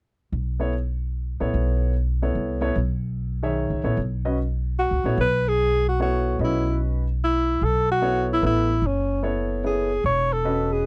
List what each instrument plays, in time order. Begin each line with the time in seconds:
0.32 upright bass B1
0.60 grand piano B3 E4 A4 C#5
1.40 upright bass A#1, grand piano B3 E4 A4 C#5
1.54 upright bass B1
2.22 grand piano B3 E4 A4 C#5
2.35 upright bass C2
2.61 grand piano B3 E4 A4 C#5
2.76 upright bass B1
3.43 grand piano D#3 G#4 C#5 E5
3.70 upright bass C#2
3.83 upright bass A#1, grand piano B3 E4 A4 C#5
3.97 upright bass B1
4.25 grand piano C#4 F#4 B4 D#5
4.79 alto saxophone F#4
4.91 upright bass C#2
5.04 upright bass A#1, grand piano B3 E4 A4 C#5
5.17 upright bass B1, alto saxophone B4
5.48 alto saxophone G#4
5.89 alto saxophone F#4
6.00 grand piano B3 E4 A4 C#5, alto saxophone F#4
6.39 upright bass B1, grand piano C#4 F#4 B4 D#5
6.44 alto saxophone E4
7.24 alto saxophone E4
7.61 upright bass B1, alto saxophone A4
7.92 alto saxophone F#4
8.02 grand piano B3 E4 A4 C#5
8.33 alto saxophone E4
8.42 upright bass A1, grand piano B3 E4 A4 B4, alto saxophone E4
8.82 upright bass F#1
8.87 alto saxophone C#4
9.23 grand piano B3 E4 A4 C#5
9.64 grand piano B3 E4 A4 C#5, alto saxophone G#4
10.04 upright bass E1, alto saxophone C#5
10.33 alto saxophone A4
10.45 grand piano C#4 F#4 B4 D#5
10.73 alto saxophone G#4